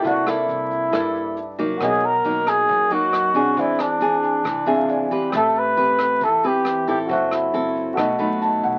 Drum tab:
HH |xxxxxxxx|xxxxxxxx|xxxxxxxx|xxxxxxxx|
SD |-r--r---|r--r--r-|-r--r---|r--r--r-|
BD |o--oo--o|o--oo--o|o--oo--o|o--oo--o|

HH |x-xxxxxx|
SD |-r--r---|
BD |o--oo--o|